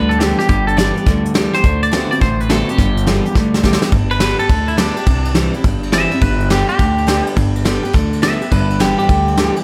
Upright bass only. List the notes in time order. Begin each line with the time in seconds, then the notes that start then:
Already playing: D2
0.49 G1
1.06 D2
1.64 D2
2.21 A1
2.78 G1
3.35 D2
3.92 G1
4.49 D2
5.07 C2
5.64 G1
6.21 G1
6.79 D2
7.36 G1
7.94 D2
8.52 G1
9.09 D2